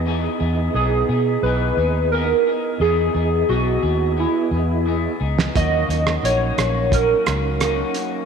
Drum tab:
HH |----------------|----------------|x-x-x-x-x-x-x-x-|
SD |----------------|---------------o|---r--r---r-r---|
BD |----------------|----------------|o-------o-------|